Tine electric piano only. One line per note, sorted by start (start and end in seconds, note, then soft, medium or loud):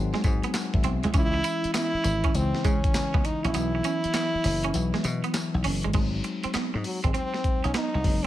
0.00 1.16 F#3 medium
0.00 1.14 G#3 medium
0.00 1.16 C4 medium
0.00 0.88 D#4 medium
0.00 1.16 F#4 medium
0.00 0.13 F#5 medium
0.00 0.14 G#5 medium
0.00 1.16 C6 medium
0.14 0.23 G#5 medium
0.25 0.52 G#5 medium
0.54 0.72 F#5 medium
0.74 1.11 E5 medium
1.13 2.08 E3 medium
1.13 2.08 G#3 medium
1.13 2.08 C#4 medium
1.13 2.08 E4 medium
2.33 3.28 C#3 medium
2.33 3.28 E3 medium
2.33 3.28 G#3 medium
2.33 3.28 E4 medium
3.54 4.48 E3 medium
3.54 4.48 F#3 medium
3.54 4.48 B3 medium
3.54 4.48 E4 medium
4.73 5.68 E3 medium
4.73 5.68 F#3 medium
4.73 5.68 B3 medium
4.73 5.68 E4 medium
5.94 6.88 F#3 medium
5.94 6.88 G#3 medium
5.94 6.03 A3 medium
5.94 6.88 D#4 loud
6.01 6.91 C4 medium
8.04 8.27 F#3 medium
8.04 8.27 G#3 medium
8.04 8.27 C4 medium
8.04 8.27 D#4 medium